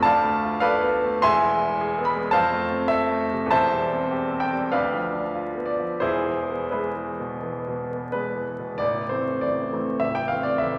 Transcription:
0.03 1.19 D2 medium
0.03 0.56 D5 medium
0.03 0.56 F5 medium
0.03 0.59 A5 loud
0.24 0.53 A3 medium
0.44 0.73 F4 medium
0.60 0.94 A4 medium
0.60 1.18 B4 medium
0.60 1.18 D5 medium
0.60 1.22 F5 loud
0.80 1.14 B3 medium
1.04 1.23 A3 soft
1.22 2.33 E1 medium
1.22 2.33 E2 medium
1.22 2.04 E5 loud
1.22 2.04 G#5 loud
1.22 2.08 C6 loud
1.43 1.72 G#3 medium
1.61 1.91 E4 medium
1.81 2.10 G#4 medium
1.98 2.28 B3 medium
2.05 2.34 B5 medium
2.16 2.35 G#3 medium
2.31 3.50 F2 medium
2.31 2.87 C5 medium
2.31 2.87 F5 medium
2.31 2.90 A5 loud
2.52 2.83 A3 medium
2.72 3.03 C4 medium
2.88 3.24 A4 medium
2.88 3.50 E5 loud
3.11 3.46 A3 medium
3.33 3.54 C3 soft
3.46 4.65 E2 medium
3.51 4.67 E1 medium
3.51 4.37 C5 medium
3.51 4.37 E5 medium
3.51 4.41 A5 loud
3.73 4.04 G3 medium
3.93 4.25 C4 soft
4.11 4.44 G4 medium
4.32 4.64 C4 soft
4.40 4.71 G5 medium
4.52 4.72 G3 soft
4.72 6.00 D2 medium
4.72 5.64 B4 medium
4.72 5.64 D5 medium
4.72 5.68 F5 medium
4.93 5.27 F3 soft
5.13 5.48 D4 soft
5.35 5.71 F4 soft
5.55 5.93 B3 soft
5.66 6.02 D5 medium
5.79 6.03 F3 soft
6.00 7.38 E1 medium
6.00 7.39 E2 medium
6.00 6.69 E4 medium
6.00 6.69 G#4 medium
6.00 6.73 C5 medium
6.26 6.64 E3 soft
6.49 6.88 B3 soft
6.71 7.11 G#3 soft
6.71 8.43 E4 soft
6.71 8.42 G#4 soft
6.71 8.11 B4 medium
6.96 7.34 E3 soft
7.20 7.57 B2 soft
7.43 7.80 E3 soft
7.68 8.04 B2 soft
7.91 8.27 B3 soft
8.12 8.51 G#3 soft
8.12 8.80 B4 medium
8.36 8.72 E3 soft
8.59 8.81 B2 soft
8.75 9.08 A0 soft
8.75 9.10 D5 medium
8.80 9.10 A1 medium
9.09 9.39 E3 soft
9.09 9.40 A3 soft
9.09 9.39 C4 soft
9.09 9.41 C5 medium
9.41 9.72 A0 soft
9.41 9.72 A1 soft
9.41 10.01 D5 medium
9.73 9.99 E3 soft
9.73 10.00 A3 soft
9.73 10.00 C4 soft
10.00 10.31 A0 medium
10.00 10.31 A1 soft
10.00 10.15 E5 medium
10.15 10.30 G5 medium
10.28 10.57 E3 soft
10.28 10.58 A3 soft
10.28 10.58 C4 soft
10.28 10.44 F5 medium
10.43 10.59 D5 medium
10.58 10.78 A0 soft
10.58 10.78 A1 soft
10.58 10.78 E5 medium

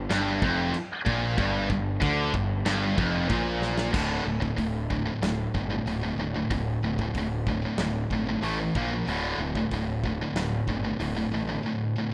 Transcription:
0.10 0.40 G1 loud
0.10 0.41 G2 loud
0.10 snare loud
0.10 china medium
0.42 0.72 F1 medium
0.42 0.73 F2 medium
0.42 kick loud
0.74 china medium
1.06 1.36 A#1 loud
1.06 1.37 A#2 loud
1.06 kick loud
1.38 1.68 G1 loud
1.38 1.69 G2 loud
1.38 kick loud
1.38 china medium
1.69 2.00 G1 medium
1.69 1.96 G2 medium
1.69 kick medium
2.01 2.31 D2 loud
2.01 2.33 D3 loud
2.01 kick loud
2.01 china medium
2.33 2.64 G1 medium
2.33 2.59 G2 medium
2.33 kick medium
2.65 2.95 G1 loud
2.65 2.97 G2 loud
2.65 snare loud
2.65 china medium
2.98 3.28 F1 medium
2.98 3.28 F2 medium
2.98 kick loud
3.28 3.90 A#1 loud
3.28 3.92 A#2 loud
3.28 kick loud
3.28 china medium
3.62 snare medium
3.78 snare medium
3.93 4.19 D1 medium
3.93 4.23 D2 medium
3.93 4.24 A2 medium
3.93 4.24 D3 loud
3.93 kick loud
3.93 crash loud
4.26 4.51 D1 medium
4.26 4.41 D2 medium
4.26 4.40 A2 medium
4.41 4.56 D2 medium
4.41 4.57 A2 medium
4.41 kick medium
4.57 5.09 D1 medium
4.57 4.86 D2 medium
4.57 4.87 A2 medium
4.57 kick medium
4.57 open hi-hat medium
4.90 5.06 D2 medium
4.90 5.06 A2 medium
4.90 kick medium
5.07 5.20 D2 medium
5.07 5.21 A2 medium
5.21 5.47 D1 medium
5.21 5.51 D2 medium
5.21 5.51 A2 medium
5.21 snare loud
5.21 open hi-hat medium
5.54 5.80 G1 medium
5.54 5.69 D2 medium
5.54 5.69 A2 medium
5.54 kick medium
5.70 5.85 D2 medium
5.70 5.85 A2 medium
5.86 6.11 D1 medium
5.86 6.01 D2 medium
5.86 6.00 A2 medium
5.86 open hi-hat medium
6.01 6.17 D2 medium
6.01 6.17 A2 medium
6.17 6.43 D1 medium
6.17 6.34 D2 medium
6.17 6.33 A2 medium
6.34 6.49 D2 medium
6.34 6.49 A2 medium
6.50 6.76 D1 medium
6.50 6.79 D2 medium
6.50 6.79 A2 medium
6.50 kick medium
6.50 open hi-hat medium
6.82 7.08 D1 medium
6.82 6.97 D2 medium
6.82 6.97 A2 medium
6.98 7.14 D2 medium
6.98 7.14 A2 medium
6.98 kick medium
7.14 7.66 D1 medium
7.14 7.44 D2 medium
7.14 7.44 A2 medium
7.14 kick medium
7.14 open hi-hat medium
7.47 7.61 D2 medium
7.47 7.61 A2 medium
7.47 kick medium
7.62 7.76 D2 medium
7.62 7.77 A2 medium
7.78 8.04 D1 medium
7.78 8.07 D2 medium
7.78 8.07 A2 medium
7.78 snare loud
7.78 open hi-hat medium
8.10 8.36 G#1 medium
8.10 8.25 D2 medium
8.10 8.25 A2 medium
8.10 kick medium
8.26 8.41 D2 medium
8.26 8.40 A2 medium
8.41 8.68 A1 medium
8.41 8.56 A2 medium
8.41 8.56 E3 medium
8.41 8.57 A3 loud
8.41 open hi-hat soft
8.59 8.74 A2 medium
8.59 8.75 E3 medium
8.75 9.01 A#1 medium
8.75 8.89 A#2 medium
8.75 8.89 F3 medium
8.75 8.89 A#3 medium
8.75 kick loud
8.91 9.04 A#2 medium
8.91 9.05 F3 medium
9.05 9.32 D1 medium
9.05 9.36 D2 medium
9.05 9.37 A2 medium
9.05 9.37 D3 medium
9.05 open hi-hat medium
9.38 9.64 D1 medium
9.38 9.54 D2 medium
9.38 9.54 A2 medium
9.55 9.70 D2 medium
9.55 9.70 A2 medium
9.55 kick medium
9.71 10.22 D1 medium
9.71 10.00 D2 medium
9.71 10.00 A2 medium
9.71 kick medium
9.71 open hi-hat medium
10.04 10.20 D2 medium
10.04 10.20 A2 medium
10.04 kick medium
10.21 10.35 D2 medium
10.21 10.35 A2 medium
10.34 10.60 D1 medium
10.34 10.65 D2 medium
10.34 10.65 A2 medium
10.34 snare loud
10.34 open hi-hat medium
10.67 10.93 G1 medium
10.67 10.83 D2 medium
10.67 10.83 A2 medium
10.67 kick medium
10.84 10.98 D2 medium
10.84 10.98 A2 medium
10.99 11.25 D1 medium
10.99 11.14 D2 medium
10.99 11.14 A2 medium
10.99 open hi-hat medium
11.15 11.31 D2 medium
11.15 11.30 A2 medium
11.32 11.57 A1 medium
11.32 11.46 D2 medium
11.32 11.46 A2 medium
11.48 11.62 D2 medium
11.48 11.62 A2 medium
11.63 11.92 D2 medium
11.63 11.93 A2 medium
11.96 12.11 D2 medium
11.96 12.10 A2 medium

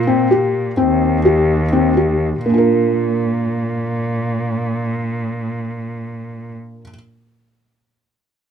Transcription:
0.00 0.80 A#2 medium
0.07 0.27 C4 medium
0.31 0.70 G4 medium
0.77 2.42 D#2 medium
0.77 1.17 C4 medium
1.25 1.65 G4 medium
1.73 1.93 C4 medium
1.97 2.38 G4 soft
2.45 6.53 A#2 medium
2.45 6.80 A#3 soft
2.49 6.84 D4 soft
2.54 6.88 F4 soft
2.58 6.92 A#4 soft

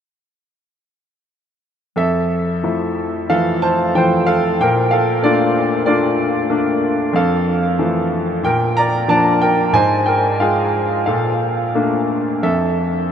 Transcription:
1.96 4.55 F2 soft
1.96 3.25 A4 soft
1.96 3.34 E5 medium
2.64 3.27 F3 soft
2.64 3.28 A3 soft
2.64 3.28 E4 soft
3.30 3.93 E3 soft
3.30 3.93 F3 soft
3.30 3.93 A3 soft
3.30 3.60 A4 soft
3.30 3.63 F5 medium
3.62 3.93 C5 soft
3.62 3.96 A5 medium
3.95 4.58 E3 soft
3.95 4.57 F3 soft
3.95 4.58 A3 soft
3.95 4.26 C5 soft
3.95 4.25 G5 medium
4.26 4.58 A4 soft
4.26 4.60 F5 medium
4.60 7.11 A#2 soft
4.60 4.91 A#4 soft
4.60 4.93 G5 medium
4.91 5.22 A4 soft
4.91 5.24 F5 medium
5.22 5.85 A3 soft
5.22 5.85 A#3 soft
5.22 5.85 D4 soft
5.22 5.84 F4 soft
5.22 5.83 D5 medium
5.86 6.48 A3 soft
5.86 6.49 A#3 soft
5.86 6.49 D4 soft
5.86 6.79 F4 soft
5.86 6.78 D5 soft
6.50 7.12 A3 soft
6.50 7.12 A#3 soft
6.50 7.12 D4 soft
7.13 8.39 F2 soft
7.13 8.40 A4 soft
7.13 8.48 F5 medium
7.79 8.42 E3 soft
7.79 8.42 F3 soft
7.79 8.42 A3 soft
8.43 9.71 A#2 soft
8.43 8.75 A#4 soft
8.43 8.78 G5 medium
8.77 9.08 D5 soft
8.77 9.10 A#5 medium
9.08 9.72 F3 soft
9.08 9.72 A#3 soft
9.08 9.73 D4 soft
9.08 9.40 D5 soft
9.08 9.43 A5 medium
9.42 9.73 A#4 soft
9.42 9.76 G5 medium
9.73 11.03 G#2 soft
9.73 10.06 C5 soft
9.73 10.05 G#5 medium
10.06 10.39 A#4 soft
10.06 10.40 G5 medium
10.40 11.05 G#3 soft
10.40 11.06 F4 soft
10.40 11.05 G#4 soft
10.40 11.05 F5 soft
10.40 11.06 G5 soft
11.06 12.39 A#2 soft
11.06 12.05 A4 soft
11.06 12.05 F5 soft
11.75 12.41 A3 soft
11.75 12.41 A#3 soft
11.75 12.41 D4 soft
12.43 13.12 F2 soft
12.43 13.12 A4 soft
12.43 13.12 E5 medium

